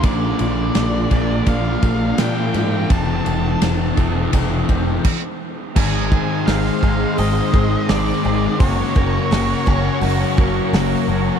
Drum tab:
CC |----------------|------------x---|x---------------|----------------|
RD |x-x-x-x-x-x-x-x-|x-x-x-x-x-x-----|----------------|----------------|
HH |----------------|----------------|----o---o---o---|o---o---o---o---|
SD |----o-------o---|----o-----------|----oo------o---|----o-------o---|
BD |o-----o-o-o-----|o-----o-o-o-o---|o-o---o---o-----|o-o---o---o-----|